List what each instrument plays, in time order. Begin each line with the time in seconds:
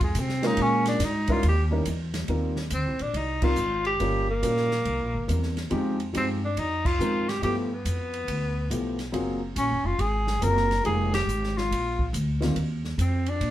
Already playing: upright bass F2
0.01 tenor saxophone G#3, kick, ride
0.15 upright bass C3, kick, hi-hat pedal, ride
0.19 tenor saxophone C4
0.29 snare
0.42 grand piano G#3 A#3 C#4 F4 A#4, tenor saxophone D#4, snare, ride
0.57 upright bass A#2, kick, ride
0.62 tenor saxophone C#4
0.86 tenor saxophone D4, snare, ride
1.00 upright bass G#2, kick, snare, hi-hat pedal, ride
1.05 tenor saxophone D#4
1.27 grand piano G3 C#4 D#4 E4 A#4, kick, ride
1.32 tenor saxophone F4
1.43 upright bass D#2, kick, ride
1.49 tenor saxophone G4
1.71 grand piano G3 C#4 D#4 E4 A#4
1.85 upright bass E2, kick, hi-hat pedal, ride
2.14 snare, ride
2.28 upright bass D#2, grand piano G3 C4 D#4 F4 A#4, kick, ride
2.56 snare
2.70 upright bass D2, tenor saxophone C4, kick, hi-hat pedal, ride
2.85 upright bass C2
2.99 upright bass A#1, tenor saxophone D4, ride
3.13 upright bass C2, tenor saxophone D#4, kick, ride
3.42 grand piano G3 C4 D#4 F4 A#4, tenor saxophone F4, kick, crash
3.56 upright bass G#1, hi-hat pedal
3.85 tenor saxophone G4, ride
3.99 upright bass G1, grand piano G3 A#3 C#4 F4 A#4, kick, ride
4.30 tenor saxophone A#3
4.42 upright bass A#1, grand piano G3 A#3 C#4 F4 A#4, kick, hi-hat pedal, ride
4.57 snare
4.71 snare
4.85 upright bass C2, kick, ride
5.00 upright bass A#1
5.14 upright bass G1
5.27 upright bass E2, grand piano G3 A#3 C4 E4 C5, kick, hi-hat pedal, ride
5.43 snare
5.57 snare, ride
5.70 upright bass F2, grand piano F3 G#3 C4 D#4 G4, kick, ride
6.00 ride
6.13 upright bass G2, grand piano F3 G#3 C4 D#4 G4, kick, hi-hat pedal, ride
6.17 tenor saxophone C4
6.45 tenor saxophone D4
6.57 upright bass F2, tenor saxophone D#4, kick, ride
6.85 tenor saxophone F4, kick, crash
6.99 upright bass G#2, grand piano F3 G#3 C4 D#4 A#4, hi-hat pedal
7.29 tenor saxophone G4, snare, ride
7.42 upright bass G2, grand piano F3 A3 B3 E4 G4, tenor saxophone G4, kick, ride
7.72 tenor saxophone B3
7.85 upright bass F2, kick, hi-hat pedal, ride
8.14 ride
8.28 upright bass D2, kick, ride
8.70 upright bass B1, grand piano F3 A3 B3 E4 G4, kick, hi-hat pedal, ride
8.99 snare, ride
9.12 upright bass F#1, grand piano F#3 A#3 C4 F4 G#4, kick, ride
9.56 upright bass A#1, tenor saxophone C#4, kick, hi-hat pedal, ride
9.70 upright bass F#1
9.84 upright bass F1, tenor saxophone F4
9.98 upright bass G#1, tenor saxophone G#4, kick, ride
10.27 snare
10.41 upright bass F#1, grand piano F#3 A#3 C4 F4 A#4, tenor saxophone A#4, kick, hi-hat pedal, ride
10.57 snare
10.71 snare, ride
10.84 upright bass F1, grand piano F3 G#3 A#3 D#4 G4, tenor saxophone G#4, kick, ride
11.14 tenor saxophone G4, snare, ride
11.27 upright bass G#1, hi-hat pedal
11.44 snare
11.58 tenor saxophone F4, snare
11.71 upright bass A#1, kick, ride
11.99 kick
12.13 upright bass D2, kick, hi-hat pedal, ride
12.41 grand piano D#3 G3 A#3 C4 F4, snare, ride
12.55 upright bass D#2, kick, ride
12.84 snare
12.98 upright bass F2, tenor saxophone C4, kick, hi-hat pedal, ride
13.26 tenor saxophone D4, ride
13.40 upright bass A#2, kick, ride